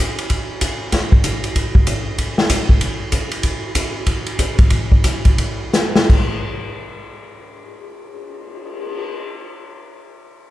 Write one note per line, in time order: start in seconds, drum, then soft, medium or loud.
0.18 ride medium
0.30 kick soft
0.30 ride medium
0.61 kick soft
0.61 hi-hat pedal medium
0.61 ride medium
0.92 kick soft
0.92 snare soft
0.92 ride medium
1.12 kick medium
1.24 kick soft
1.24 hi-hat pedal medium
1.24 ride medium
1.44 ride medium
1.56 kick soft
1.56 ride medium
1.75 kick medium
1.87 kick soft
1.87 hi-hat pedal medium
1.87 ride medium
2.18 kick soft
2.18 ride medium
2.38 snare medium
2.50 kick soft
2.50 hi-hat pedal medium
2.50 ride medium
2.69 kick medium
2.81 kick soft
2.81 ride medium
3.12 kick soft
3.12 hi-hat pedal medium
3.12 ride medium
3.31 ride medium
3.43 kick soft
3.43 ride medium
3.75 kick soft
3.75 hi-hat pedal medium
3.75 ride medium
4.07 kick soft
4.07 ride medium
4.26 ride medium
4.39 kick soft
4.39 hi-hat pedal medium
4.39 ride medium
4.59 kick medium
4.59 ride medium
4.70 kick soft
4.70 ride medium
4.92 kick medium
5.04 kick soft
5.04 hi-hat pedal medium
5.04 ride medium
5.25 kick medium
5.25 ride medium
5.38 kick soft
5.38 ride medium
5.73 snare medium
5.73 hi-hat pedal medium
5.96 snare medium
6.10 kick medium
6.10 crash medium
6.33 cymbal swell soft